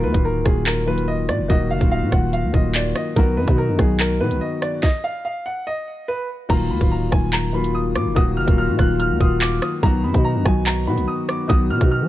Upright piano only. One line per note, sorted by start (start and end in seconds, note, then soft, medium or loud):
0.04 0.23 B4 medium
0.25 0.44 A#4 medium
0.45 0.65 G#4 medium
0.66 0.86 A#4 medium
0.88 1.07 B4 medium
1.08 1.27 D#5 medium
1.29 1.48 D5 medium
1.50 1.69 D#5 loud
1.71 1.90 F5 medium
1.92 2.11 F5 medium
2.13 2.32 F#5 medium
2.33 2.52 F5 medium
2.54 2.73 D#5 medium
2.75 2.94 D5 medium
2.95 3.15 D#5 medium
3.16 3.36 A#4 loud
3.37 3.56 B4 medium
3.58 3.77 A#4 medium
3.79 3.98 G#4 medium
4.00 4.19 A#4 medium
4.21 4.40 B4 medium
4.41 4.60 D#5 medium
4.62 4.81 D5 medium
4.83 5.02 D#5 loud
5.04 5.23 F5 medium
5.25 5.44 F5 medium
5.46 5.65 F#5 medium
5.67 6.06 D#5 medium
6.08 6.27 B4 medium
6.50 6.69 A#5 loud
6.70 6.90 B5 medium
6.91 7.11 A#5 medium
7.12 7.31 G#5 medium
7.33 7.52 A#5 medium
7.54 7.73 B5 medium
7.75 7.94 D#6 medium
7.96 8.15 D6 medium
8.16 8.35 D#6 loud
8.37 8.56 F6 medium
8.58 8.77 F6 medium
8.79 8.98 F#6 medium
9.00 9.19 F6 medium
9.21 9.40 D#6 medium
9.42 9.61 D6 medium
9.62 9.81 D#6 medium
9.83 10.02 A#5 loud
10.04 10.23 B5 medium
10.25 10.44 A#5 medium
10.45 10.65 G#5 medium
10.66 10.86 A#5 medium
10.87 11.06 B5 medium
11.08 11.27 D#6 medium
11.29 11.48 D6 medium
11.49 11.69 D#6 loud
11.70 11.90 F6 medium
11.91 12.08 F6 medium